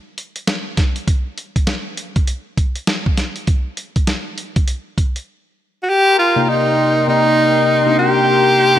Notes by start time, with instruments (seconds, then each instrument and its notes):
0.18 closed hi-hat
0.36 closed hi-hat
0.47 snare, closed hi-hat
0.77 kick, snare, closed hi-hat
0.96 closed hi-hat
1.08 kick, closed hi-hat
1.38 closed hi-hat
1.56 kick, closed hi-hat
1.67 snare, closed hi-hat
1.97 closed hi-hat
2.16 kick, closed hi-hat
2.27 closed hi-hat
2.57 kick, closed hi-hat
2.75 closed hi-hat
2.87 snare, closed hi-hat
3.06 kick
3.17 snare, closed hi-hat
3.36 closed hi-hat
3.47 kick, closed hi-hat
3.77 closed hi-hat
3.96 kick, closed hi-hat
4.07 snare, closed hi-hat
4.38 closed hi-hat
4.56 kick, closed hi-hat
4.68 closed hi-hat
4.98 kick, closed hi-hat
5.16 closed hi-hat
5.83 tenor saxophone F#4
5.88 tenor saxophone G4, analog synth pad A#4 G5 A#5 C6
6.19 tenor saxophone F4
6.36 tine electric piano C3 A#3 D#4 G4 D5
6.43 tenor saxophone F4
6.49 tenor saxophone D#4
7.08 tine electric piano C3 A#3 D#4 G4 D5, tenor saxophone D#4
7.86 tine electric piano C3 A#3 D4 D#4 G4
7.99 tenor saxophone G4